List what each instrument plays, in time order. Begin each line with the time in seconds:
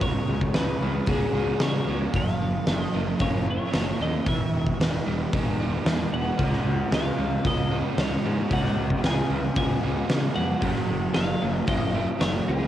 Already playing: overdriven electric guitar G#3 B3 F#4, twelve-string acoustic guitar B3 C#4 G#4
0.01 fingered electric bass C#2, overdriven electric guitar C#3, twelve-string acoustic guitar F#3, clean electric guitar C#5, kick, open hi-hat
0.27 fingered electric bass C#2, twelve-string acoustic guitar F#3, overdriven electric guitar G#3
0.41 kick
0.54 fingered electric bass C#2, overdriven electric guitar C#3, twelve-string acoustic guitar B3, clean electric guitar B4, snare, open hi-hat
0.81 fingered electric bass C#2, overdriven electric guitar G#3, twelve-string acoustic guitar C#4
1.06 fingered electric bass C#2, overdriven electric guitar B3 F#4, twelve-string acoustic guitar G#4, clean electric guitar G#4, kick, open hi-hat
1.33 fingered electric bass C#2, overdriven electric guitar G#3 F#4, twelve-string acoustic guitar B3
1.60 fingered electric bass C#3, overdriven electric guitar C#3 G#3, twelve-string acoustic guitar F#3, clean electric guitar C#5, snare, open hi-hat
1.87 fingered electric bass C#2, overdriven electric guitar G#3 B3, twelve-string acoustic guitar B3
2.13 fingered electric bass F#1, overdriven electric guitar F#3, clean electric guitar F5, kick, open hi-hat
2.27 snare
2.39 fingered electric bass F#1, overdriven electric guitar A#3
2.66 fingered electric bass F#1, overdriven electric guitar F#3, clean electric guitar D#5, snare, open hi-hat
2.93 fingered electric bass F#1, overdriven electric guitar A#3, twelve-string acoustic guitar A#3
3.18 fingered electric bass F#1, twelve-string acoustic guitar C#4, overdriven electric guitar C#4 F4, clean electric guitar C#5, kick, open hi-hat
3.45 overdriven electric guitar A#3 F4
3.50 clean electric guitar C#5
3.72 fingered electric bass F#1, overdriven electric guitar F#3 A#3, snare, open hi-hat
3.98 fingered electric bass D#2, twelve-string acoustic guitar F3, overdriven electric guitar A#3 C#4, clean electric guitar D#5
4.26 fingered electric bass E1, overdriven electric guitar E3, twelve-string acoustic guitar E3, clean electric guitar E5, kick, open hi-hat
4.52 fingered electric bass E1, twelve-string acoustic guitar E3, overdriven electric guitar G#3
4.66 kick
4.79 fingered electric bass E1, overdriven electric guitar E3, twelve-string acoustic guitar B3, snare, open hi-hat
5.06 fingered electric bass E1, overdriven electric guitar G#3, twelve-string acoustic guitar D#4
5.33 fingered electric bass E1, overdriven electric guitar B3 D#4, twelve-string acoustic guitar G#4, kick, open hi-hat
5.59 fingered electric bass E1, overdriven electric guitar G#3 D#4, twelve-string acoustic guitar B3
5.85 fingered electric bass E2, overdriven electric guitar E3 G#3, twelve-string acoustic guitar E3, snare, open hi-hat
6.12 fingered electric bass E1, overdriven electric guitar G#3 B3, twelve-string acoustic guitar B3, clean electric guitar F#5
6.37 fingered electric bass C#2, overdriven electric guitar C#3 G#3 C#4, twelve-string acoustic guitar F#3, kick, open hi-hat
6.53 snare
6.65 fingered electric bass C#2, twelve-string acoustic guitar F#3, overdriven electric guitar G#3
6.91 fingered electric bass C#2, overdriven electric guitar C#3, twelve-string acoustic guitar B3, clean electric guitar F5, snare, open hi-hat
7.18 fingered electric bass C#2, overdriven electric guitar G#3, twelve-string acoustic guitar C#4
7.45 fingered electric bass C#2, overdriven electric guitar B3 F#4, twelve-string acoustic guitar G#4, clean electric guitar D#5, kick, open hi-hat
7.71 overdriven electric guitar G#3 F#4, twelve-string acoustic guitar B3
7.97 fingered electric bass C#2, overdriven electric guitar C#3 G#3, twelve-string acoustic guitar F#3, clean electric guitar C#5, snare, open hi-hat
8.24 fingered electric bass G#2, overdriven electric guitar G#3 B3, twelve-string acoustic guitar B3
8.49 fingered electric bass C#2, overdriven electric guitar C#3 G#3, twelve-string acoustic guitar F#3, kick, open hi-hat
8.53 overdriven electric guitar C#4, clean electric guitar F#5
8.65 snare
8.76 fingered electric bass C#2, twelve-string acoustic guitar F#3, overdriven electric guitar G#3
8.90 kick
9.03 fingered electric bass C#2, overdriven electric guitar C#3, twelve-string acoustic guitar B3, clean electric guitar G#5, snare, open hi-hat
9.30 fingered electric bass C#2, overdriven electric guitar G#3, twelve-string acoustic guitar C#4
9.55 fingered electric bass C#2, overdriven electric guitar B3 F#4, twelve-string acoustic guitar G#4, clean electric guitar G#5, kick, open hi-hat
9.83 fingered electric bass C#2, overdriven electric guitar G#3 F#4, twelve-string acoustic guitar B3
10.09 fingered electric bass C#3, overdriven electric guitar C#3 G#3, twelve-string acoustic guitar F#3, snare, open hi-hat
10.36 fingered electric bass F2, overdriven electric guitar G#3 B3, twelve-string acoustic guitar B3, clean electric guitar F#5
10.60 fingered electric bass F#1, overdriven electric guitar F#2 C#3 F#3, kick, open hi-hat
10.75 snare
10.88 fingered electric bass F#1, overdriven electric guitar A#3
11.14 fingered electric bass F#1, overdriven electric guitar F#3, twelve-string acoustic guitar A#3, clean electric guitar F5, snare, open hi-hat
11.41 fingered electric bass F#1, overdriven electric guitar A#3, twelve-string acoustic guitar C#4
11.58 clean electric guitar D#5
11.67 fingered electric bass F#1, overdriven electric guitar C#4 F4, twelve-string acoustic guitar F4, clean electric guitar D#5, kick, open hi-hat
11.94 overdriven electric guitar A#3 F4, twelve-string acoustic guitar A#3
12.21 fingered electric bass F#1, overdriven electric guitar F#3 A#3, clean electric guitar C#5, snare, open hi-hat
12.47 fingered electric bass C#2, overdriven electric guitar A#3 C#4, twelve-string acoustic guitar A#3, clean electric guitar G#4